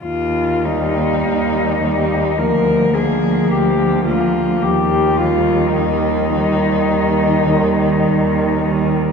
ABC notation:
X:1
M:4/4
L:1/8
Q:1/4=53
K:Eb
V:1 name="Cello"
F E3 B A G F | G F E4- E z |]
V:2 name="Cello"
z B,2 B, B, B,2 B, | z G,2 G,2 G,2 G, |]
V:3 name="Cello" clef=bass
z G,2 G, F, F,2 F, | z E,2 E,2 E,2 E, |]
V:4 name="Cello" clef=bass
E,,2 E,,2 D,,2 D,,2 | E,,2 E,,2 E,,2 E,,2 |]